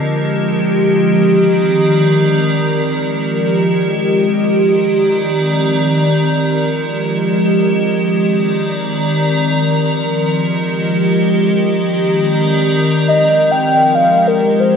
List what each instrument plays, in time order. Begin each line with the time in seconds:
Already playing: ambient pad F3 G#3 G4
0.90 ambient pad D#3
1.15 ambient pad C4
1.45 ambient pad A#4
2.65 ambient pad F3
2.70 ambient pad G#3
2.78 ambient pad G4
4.38 ambient pad D#3
4.75 ambient pad C4
4.91 ambient pad D5
5.17 ambient pad A#4
6.12 ambient pad F3
6.35 ambient pad G#3
6.62 ambient pad G4
7.86 ambient pad D#3
8.02 ambient pad C4
8.18 ambient pad D5
8.32 ambient pad A#4
9.60 ambient pad F3
10.03 ambient pad G#3
10.17 ambient pad G4
11.34 ambient pad D#3
11.63 ambient pad C4
11.86 ambient pad A#4
13.08 ambient pad F3, soft synth lead D#5
13.50 ambient pad G#3, soft synth lead G5
13.61 ambient pad D#5
13.86 ambient pad G4
13.95 soft synth lead F5
14.27 soft synth lead A#4
14.60 soft synth lead C5